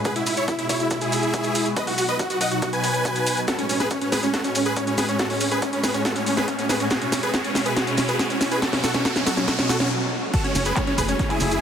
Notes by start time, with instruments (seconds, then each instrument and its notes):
0.04 analog synth pad B2 G#3 E4 F#4, supersaw synth G#4 B4, kick, closed hi-hat, maracas
0.16 supersaw synth E4, closed hi-hat
0.26 supersaw synth E4, open hi-hat, maracas
0.37 supersaw synth E4 C#5, closed hi-hat, maracas
0.48 supersaw synth E4, kick, closed hi-hat, maracas
0.59 analog synth pad B2 G#3 E4 F#4, supersaw synth E4, closed hi-hat
0.69 supersaw synth E4 C#5, kick, open hi-hat, maracas
0.80 analog synth pad B2 G#3 E4 F#4, supersaw synth E4, closed hi-hat, maracas
0.90 analog synth pad B2 G#3 E4 F#4, supersaw synth E4, kick, closed hi-hat, maracas
1.01 analog synth pad B2 G#3 E4 F#4, supersaw synth E4 G#4, closed hi-hat, maracas
1.12 open hi-hat, maracas
1.23 closed hi-hat, maracas
1.34 analog synth pad B2 G#3 E4 F#4, kick, closed hi-hat, maracas
1.43 closed hi-hat, maracas
1.55 open hi-hat, maracas
1.66 analog synth pad B2 G#3 E4 F#4, closed hi-hat, maracas
1.76 analog synth pad B2 F#3 D#4 F#4, supersaw synth B4 D#5, kick, closed hi-hat, maracas
1.87 supersaw synth F#4, open hi-hat, maracas
1.98 supersaw synth F#4, open hi-hat, maracas
2.09 supersaw synth B4 D#5, closed hi-hat, maracas
2.19 supersaw synth F#4, kick, closed hi-hat, maracas
2.30 analog synth pad B2 F#3 D#4 F#4, supersaw synth F#4, closed hi-hat, maracas
2.41 supersaw synth D#5 F#5, kick, open hi-hat, maracas
2.51 analog synth pad B2 F#3 D#4 F#4, supersaw synth F#4, closed hi-hat, maracas
2.62 analog synth pad B2 F#3 D#4 F#4, supersaw synth F#4, kick, closed hi-hat, maracas
2.73 analog synth pad B2 F#3 D#4 F#4, supersaw synth B4 G#5, closed hi-hat, maracas
2.84 open hi-hat, maracas
2.94 closed hi-hat, maracas
3.05 analog synth pad B2 F#3 D#4 F#4, kick, closed hi-hat, maracas
3.15 closed hi-hat, maracas
3.26 open hi-hat, maracas
3.37 analog synth pad B2 F#3 D#4 F#4, closed hi-hat, maracas
3.48 analog synth pad A2 G#3 C#4 F#4, supersaw synth F#4 A4, kick, snare, closed hi-hat, riser, maracas
3.59 supersaw synth C#4, closed hi-hat
3.69 supersaw synth C#4, open hi-hat, maracas
3.80 supersaw synth G#4 B4, snare, closed hi-hat, maracas
3.90 supersaw synth C#4, kick, closed hi-hat, maracas
4.01 analog synth pad A2 G#3 C#4 F#4, supersaw synth C#4, closed hi-hat
4.12 supersaw synth G#4 B4, kick, snare, open hi-hat, maracas
4.23 analog synth pad A2 G#3 C#4 F#4, supersaw synth C#4, closed hi-hat, maracas
4.34 analog synth pad A2 G#3 C#4 F#4, supersaw synth F#4 A4, kick, snare, closed hi-hat, maracas
4.44 analog synth pad A2 G#3 C#4 F#4, supersaw synth C#4, closed hi-hat, maracas
4.55 supersaw synth C#4, open hi-hat, maracas
4.66 supersaw synth G#4 B4, closed hi-hat, maracas
4.76 analog synth pad A2 G#3 C#4 F#4, supersaw synth C#4, kick, closed hi-hat, maracas
4.87 supersaw synth C#4, closed hi-hat, maracas
4.98 supersaw synth G#4 B4, snare, open hi-hat, maracas
5.09 analog synth pad A2 G#3 C#4 F#4, supersaw synth C#4, closed hi-hat, maracas
5.19 analog synth pad A2 G#3 C#4 F#4, supersaw synth F#4 A4, kick, snare, closed hi-hat, maracas
5.30 supersaw synth C#4, open hi-hat
5.40 supersaw synth C#4, open hi-hat, maracas
5.51 supersaw synth G#4 B4, closed hi-hat, maracas
5.62 supersaw synth C#4, kick, closed hi-hat, maracas
5.73 analog synth pad A2 G#3 C#4 F#4, supersaw synth C#4, closed hi-hat
5.84 supersaw synth G#4 B4, kick, snare, open hi-hat, maracas
5.94 analog synth pad A2 G#3 C#4 F#4, supersaw synth C#4, closed hi-hat, maracas
6.05 analog synth pad A2 G#3 C#4 F#4, supersaw synth F#4 A4, kick, snare, closed hi-hat, maracas
6.16 analog synth pad A2 G#3 C#4 F#4, supersaw synth C#4, closed hi-hat, maracas
6.26 supersaw synth C#4, open hi-hat, maracas
6.37 supersaw synth G#4 B4, snare, closed hi-hat, maracas
6.48 analog synth pad A2 G#3 C#4 F#4, supersaw synth C#4, kick, closed hi-hat, maracas
6.59 supersaw synth C#4, closed hi-hat, maracas
6.69 supersaw synth G#4 B4, snare, open hi-hat, maracas
6.80 analog synth pad A2 G#3 C#4 F#4, supersaw synth C#4, closed hi-hat, maracas
6.90 analog synth pad B2 G#3 E4 F#4, supersaw synth F#4 G#4, kick, snare, closed hi-hat, maracas
7.02 supersaw synth C#4, closed hi-hat
7.12 supersaw synth C#4, snare, open hi-hat, maracas
7.23 supersaw synth G#4 B4, closed hi-hat, maracas
7.34 supersaw synth F#4 G#4, kick, snare, closed hi-hat, maracas
7.44 analog synth pad B2 G#3 E4 F#4, supersaw synth C#4, closed hi-hat
7.55 supersaw synth C#4, kick, snare, open hi-hat, maracas
7.65 analog synth pad B2 G#3 E4 F#4, supersaw synth G#4 B4, closed hi-hat, maracas
7.76 analog synth pad B2 G#3 E4 F#4, supersaw synth F#4 G#4, kick, snare, closed hi-hat, maracas
7.87 analog synth pad B2 G#3 E4 F#4, supersaw synth C#4, closed hi-hat, maracas
7.97 supersaw synth C#4, snare, open hi-hat, maracas
8.08 supersaw synth G#4 B4, closed hi-hat, maracas
8.19 analog synth pad B2 G#3 E4 F#4, supersaw synth F#4 G#4, kick, snare, closed hi-hat, maracas
8.30 supersaw synth C#4, closed hi-hat, maracas
8.41 supersaw synth C#4, snare, open hi-hat, maracas
8.51 analog synth pad B2 G#3 E4 F#4, supersaw synth G#4 B4, closed hi-hat, maracas
8.62 analog synth pad B2 F#3 D#4 F#4, supersaw synth F#4 A4, kick, snare, closed hi-hat, maracas
8.73 supersaw synth C#4, snare, open hi-hat
8.84 supersaw synth F#4 A4, snare, open hi-hat, maracas
8.94 supersaw synth C#4, snare, closed hi-hat, maracas
9.05 supersaw synth F#4 A4, kick, snare, closed hi-hat, maracas
9.16 analog synth pad B2 F#3 D#4 F#4, supersaw synth C#4, snare, closed hi-hat, maracas
9.26 supersaw synth F#4 A4, kick, snare, open hi-hat, maracas
9.37 analog synth pad B2 F#3 D#4 F#4, supersaw synth C#4, snare, closed hi-hat, maracas
9.48 analog synth pad B2 F#3 D#4 F#4, supersaw synth F#4 A4, kick, snare, closed hi-hat, maracas
9.59 analog synth pad B2 F#3 D#4 F#4, supersaw synth C#4, snare, closed hi-hat, maracas
9.69 supersaw synth F#4 A4, snare, open hi-hat, maracas
9.80 supersaw synth C#4, snare, closed hi-hat, maracas
10.34 analog synth pad C#3 G#3 A3 F#4, supersaw synth F#4 A4, digital synth lead A5, kick, closed hi-hat, crash, downlifter, maracas
10.44 supersaw synth C#4, digital synth lead C#5, closed hi-hat
10.55 analog synth bass F#1, supersaw synth C#4, digital synth lead C#5, open hi-hat, maracas
10.65 supersaw synth G#4 B4, digital synth lead B5, closed hi-hat, maracas
10.76 supersaw synth C#4, digital synth lead C#5, kick, clap, closed hi-hat, maracas
10.87 analog synth pad C#3 G#3 A3 F#4, supersaw synth C#4, digital synth lead C#5, closed hi-hat
10.98 analog synth bass F#1, supersaw synth G#4 B4, digital synth lead B5, kick, open hi-hat, maracas
11.08 analog synth pad C#3 G#3 A3 F#4, supersaw synth C#4, digital synth lead C#5, closed hi-hat, maracas
11.19 analog synth pad C#3 G#3 A3 F#4, supersaw synth C#4, digital synth lead C#5, kick, closed hi-hat, maracas
11.30 analog synth pad C#3 G#3 A3 F#4, supersaw synth E4 G#4, digital synth lead G#5, clap, closed hi-hat
11.40 analog synth bass F#1, open hi-hat, maracas
11.51 closed hi-hat, maracas